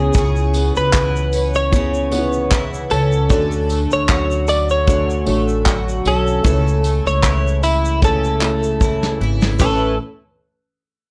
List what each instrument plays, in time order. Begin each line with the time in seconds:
Already playing: upright bass C#2, twelve-string acoustic guitar C#3 E3 C#4, felt piano B3 E4 G#4 C#5, clean electric guitar G#4
0.13 upright bass C#2, twelve-string acoustic guitar C#3 G#4, kick, shaker
0.36 shaker
0.54 twelve-string acoustic guitar B3, tambourine, shaker
0.76 upright bass C#2, clean electric guitar B4, shaker
0.93 twelve-string acoustic guitar E3, kick, clap, shaker
1.16 shaker
1.33 twelve-string acoustic guitar C#4, tambourine, shaker
1.54 clean electric guitar C#5, shaker
1.71 twelve-string acoustic guitar C#3, felt piano B3 E4 G#4 C#5, kick, shaker
1.94 shaker
2.11 felt piano B3 D#4 G#4 C#5, twelve-string acoustic guitar B3, tambourine
2.18 felt piano E4
2.33 shaker
2.51 twelve-string acoustic guitar E3, kick, clap, shaker
2.74 shaker
2.90 upright bass C#2, twelve-string acoustic guitar C#4, clean electric guitar A4, tambourine
3.12 shaker
3.29 upright bass D2, twelve-string acoustic guitar D3 A4, felt piano A3 D4 F#4 C#5, kick, shaker
3.52 shaker
3.69 twelve-string acoustic guitar A3, tambourine, shaker
3.91 upright bass D2, clean electric guitar C#5, shaker
4.08 twelve-string acoustic guitar F#3, kick, clap, shaker
4.31 shaker
4.47 twelve-string acoustic guitar C#4, clean electric guitar D5, tambourine, shaker
4.69 clean electric guitar C#5, shaker
4.86 twelve-string acoustic guitar D3, felt piano A3 D4 F#4 C#5, kick, shaker
5.10 shaker
5.25 upright bass A1, felt piano A3 D4 F#4 C#5, twelve-string acoustic guitar A3, tambourine
5.48 shaker
5.66 twelve-string acoustic guitar F#3, kick, clap, shaker
5.89 shaker
6.05 upright bass B1, twelve-string acoustic guitar C#4, clean electric guitar A4, tambourine
6.27 shaker
6.43 upright bass C#2, twelve-string acoustic guitar C#3 A4, felt piano A3 C#4 E4 B4, kick, shaker
6.51 felt piano C#5
6.68 shaker
6.84 twelve-string acoustic guitar A3, tambourine, shaker
7.05 upright bass C#2, clean electric guitar C#5, shaker
7.23 twelve-string acoustic guitar E3, kick, clap, shaker
7.47 shaker
7.63 twelve-string acoustic guitar E4, clean electric guitar E4, tambourine, shaker
7.85 shaker
8.01 twelve-string acoustic guitar C#3, felt piano A3 C#4 E4 C#5, clean electric guitar A4, kick, shaker
8.24 shaker
8.40 felt piano A3 C#4 E4 C#5, twelve-string acoustic guitar A3, clap, tambourine
8.63 shaker
8.81 twelve-string acoustic guitar E3, kick, shaker
9.03 snare, shaker
9.21 upright bass G#1, twelve-string acoustic guitar E4
9.41 snare, shaker
9.59 upright bass A1, twelve-string acoustic guitar A3 C#4 E4 B4, felt piano A3 C#4 B4, clean electric guitar A4, kick, floor tom, crash, shaker